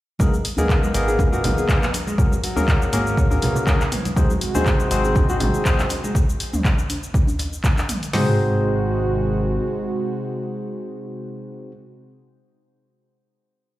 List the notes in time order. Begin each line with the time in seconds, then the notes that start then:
0.19 G#1 G#3 A#3 B3 D#4 G#4 A#4, kick, high conga, djembe tone, shaker
0.34 high conga, shaker
0.45 open hi-hat, shaker
0.57 A#3 B3 D#4 G#4 A#4, mid tom, muted conga, djembe bass, shaker
0.69 kick, clap, shaker
0.83 G#3, high conga, shaker
0.94 G#1 A#3 B3 D#4 G#4 A#4, open hi-hat, muted conga, shaker
1.08 G#4, shaker
1.18 kick, djembe tone, low conga, shaker
1.32 A#3 B3 D#4 F#4 G#4 A#4, muted conga, shaker
1.44 G#1, mid tom, open hi-hat, djembe slap, djembe tone, low conga, shaker
1.58 G#4, shaker
1.68 A#3 B3 D#4 G#4 A#4, kick, clap, muted conga, shaker
1.82 B3, clap, high conga, shaker
1.94 open hi-hat, djembe slap, shaker
2.07 G#3, muted conga, shaker
2.18 G#1 A#3 C#4 F#4 G#4 A#4, kick, high conga, shaker
2.32 high conga, shaker
2.43 F#3, open hi-hat, shaker
2.56 A#3 C#4 F#4 G#4 A#4, mid tom, muted conga, djembe bass, shaker
2.68 F#3, kick, clap, shaker
2.82 high conga, shaker
2.92 G#1 A#3 C#4 F#4 G#4 A#4, open hi-hat, djembe tone, shaker
3.07 shaker
3.17 C#4, kick, high conga, shaker
3.31 A#3 C#4 F#4 G#4 A#4, muted conga, djembe bass, shaker
3.42 E3, open hi-hat, djembe slap, high conga, low conga, shaker
3.56 low conga, shaker
3.67 C#3 A#3 C#4 F#4 G#4 A#4, kick, clap, shaker
3.81 clap, low conga, shaker
3.92 E3, mid tom, open hi-hat, shaker
4.05 open hi-hat, muted conga, high conga, shaker
4.16 G#1 C3 G#3 C4 D#4 F#4 G#4 C5, kick, djembe tone, high conga, shaker
4.30 high conga, shaker
4.41 open hi-hat, shaker
4.55 C4 D#4 F#4 G#4 C5, mid tom, muted conga, djembe bass, shaker
4.66 kick, clap, shaker
4.80 G#3, high conga, shaker
4.91 G#1 C4 D#4 F#4 G#4 C5, open hi-hat, muted conga, shaker
5.05 G#4, shaker
5.15 kick, djembe tone, low conga, shaker
5.29 C4 D#4 F#4 G#4 C5, muted conga, shaker
5.40 G#1, mid tom, open hi-hat, djembe slap, djembe tone, low conga, shaker
5.54 G#4, shaker
5.65 C4 D#4 F#4 G#4 C5, kick, clap, muted conga, shaker
5.79 C4, clap, high conga, shaker
5.89 open hi-hat, djembe slap, shaker
6.04 G#3, muted conga, shaker
6.15 kick, shaker
6.29 shaker
6.40 open hi-hat, shaker
6.53 mid tom, djembe bass, shaker
6.65 kick, clap, shaker
6.79 shaker
6.90 open hi-hat, djembe tone, shaker
7.03 shaker
7.14 kick, shaker
7.27 djembe bass, shaker
7.39 open hi-hat, djembe slap, shaker
7.53 shaker
7.64 kick, clap, shaker
7.77 clap, djembe slap, shaker
7.89 mid tom, open hi-hat, shaker
8.03 open hi-hat, shaker
8.13 G#1 C3 G#3 C4 D#4 F#4 G#4 C5, snare, floor tom, open hi-hat